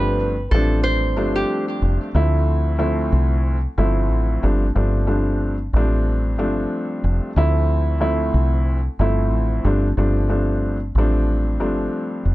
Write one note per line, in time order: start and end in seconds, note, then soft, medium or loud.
0.00 0.47 G1 loud
0.00 0.32 G2 loud
0.00 0.32 F3 medium
0.00 0.32 A3 medium
0.00 0.33 C4 medium
0.00 0.33 D4 medium
0.00 0.48 B4 medium
0.51 1.17 A1 medium
0.51 1.13 G2 medium
0.51 1.13 F3 medium
0.51 1.14 A3 medium
0.51 1.14 C4 loud
0.51 1.14 D4 loud
0.51 0.81 A4 medium
0.83 1.31 C5 medium
1.16 1.43 G1 medium
1.16 2.07 G2 loud
1.16 2.08 F3 medium
1.16 2.08 A3 medium
1.16 2.08 C4 medium
1.16 2.08 D4 loud
1.36 1.65 G4 medium
1.82 1.97 F1 medium
2.15 3.08 D2 loud
2.15 2.75 D2 medium
2.15 2.75 F3 medium
2.15 2.75 A3 medium
2.15 2.76 C4 medium
2.15 2.76 E4 loud
2.78 3.55 D2 loud
2.78 3.55 F3 medium
2.78 3.55 A3 medium
2.78 3.56 C4 medium
2.78 3.56 E4 loud
3.12 3.66 C2 medium
3.78 4.10 G1 loud
3.78 4.43 D2 medium
3.78 4.42 F3 medium
3.78 4.42 A3 medium
3.78 4.42 C4 medium
3.78 4.43 E4 loud
4.10 4.37 A1 loud
4.43 4.70 G1 loud
4.43 4.64 G2 loud
4.43 4.64 F3 medium
4.43 4.64 A3 medium
4.43 4.65 C4 medium
4.43 4.65 D4 loud
4.75 5.69 G1 loud
4.75 5.05 G2 medium
4.75 5.06 F3 medium
4.75 5.06 A3 medium
4.75 5.06 C4 medium
4.75 5.06 D4 loud
5.07 5.54 G2 medium
5.07 5.54 F3 medium
5.07 5.54 A3 medium
5.07 5.54 C4 medium
5.07 5.54 D4 medium
5.73 6.39 A1 medium
5.73 6.35 G2 medium
5.73 6.35 F3 medium
5.73 6.35 A3 medium
5.73 6.35 C4 medium
5.73 6.35 D4 loud
6.38 6.65 G1 medium
6.38 7.29 G2 medium
6.38 7.29 F3 medium
6.38 7.29 A3 medium
6.38 7.30 C4 medium
6.38 7.30 D4 loud
7.04 7.19 F1 medium
7.36 8.30 D2 loud
7.36 7.97 D2 medium
7.36 7.97 F3 medium
7.36 7.97 A3 medium
7.36 7.97 C4 medium
7.36 7.98 E4 loud
8.00 8.77 D2 loud
8.00 8.77 F3 medium
8.00 8.77 A3 medium
8.00 8.77 C4 medium
8.00 8.78 E4 loud
8.34 8.87 C2 medium
8.99 9.32 G1 loud
8.99 9.65 D2 medium
8.99 9.63 F3 medium
8.99 9.64 A3 medium
8.99 9.64 C4 medium
8.99 9.65 E4 loud
9.32 9.58 A1 medium
9.64 9.91 G1 loud
9.64 9.86 G2 loud
9.64 9.86 F3 medium
9.64 9.86 A3 medium
9.64 9.86 C4 medium
9.64 9.86 D4 loud
9.97 10.91 G1 loud
9.97 10.27 G2 medium
9.97 10.28 F3 medium
9.97 10.28 A3 medium
9.97 10.28 C4 medium
9.97 10.28 D4 loud
10.29 10.76 G2 loud
10.29 10.76 F3 medium
10.29 10.76 A3 medium
10.29 10.76 C4 medium
10.29 10.76 D4 medium
10.95 11.60 A1 medium
10.95 11.57 G2 medium
10.95 11.57 F3 medium
10.95 11.57 A3 medium
10.95 11.57 C4 medium
10.95 11.57 D4 loud
11.60 11.87 G1 medium
11.60 12.35 G2 loud
11.60 12.35 F3 medium
11.60 12.35 A3 medium
11.60 12.35 C4 medium
11.60 12.35 D4 loud
12.25 12.35 F1 medium